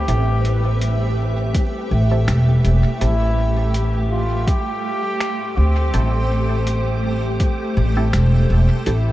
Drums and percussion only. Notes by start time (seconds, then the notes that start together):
0.08 closed hi-hat
0.45 closed hi-hat
0.81 closed hi-hat
1.55 kick, closed hi-hat
2.28 finger snap, closed hi-hat
2.65 closed hi-hat
3.01 closed hi-hat
3.74 closed hi-hat
4.47 kick, closed hi-hat
5.21 finger snap, closed hi-hat
5.94 closed hi-hat
6.67 closed hi-hat
7.40 kick, closed hi-hat
8.13 finger snap, closed hi-hat
8.86 closed hi-hat